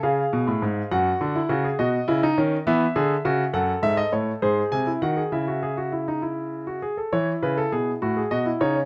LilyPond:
<<
  \new Staff \with { instrumentName = "Grand piano" } { \time 6/8 \key cis \phrygian \tempo 4. = 68 << { eis''4. fis''4. | dis''4. e''4. | \key cis \minor fis''8 e''16 dis''16 cis''8 bis'8 gis''8 fis''8 | e''2~ e''8 r8 |
cis''8 b'16 a'16 gis'8 r8 dis''8 cis''8 | } \\ { gis'4. fis'8. e'16 fis'16 gis'16 | fis'8 e'16 dis'16 cis'8 b8 gis'8 fis'8 | a'4. gis'8. e'16 fis'16 gis'16 | e'16 fis'16 gis'16 fis'16 e'16 dis'16 e'8. fis'16 gis'16 a'16 |
e'4. fis'16 gis'16 fis'16 e'16 dis'16 cis'16 | } >> }
  \new Staff \with { instrumentName = "Grand piano" } { \clef bass \time 6/8 \key cis \phrygian cis8 b,16 a,16 gis,8 fis,8 d8 cis8 | b,8 cis8 dis8 e8 d8 cis8 | \key cis \minor fis,8 gis,8 a,8 gis,8 bis,8 dis8 | cis2~ cis8 r8 |
e8 cis8 b,8 a,8 b,8 cis8 | }
>>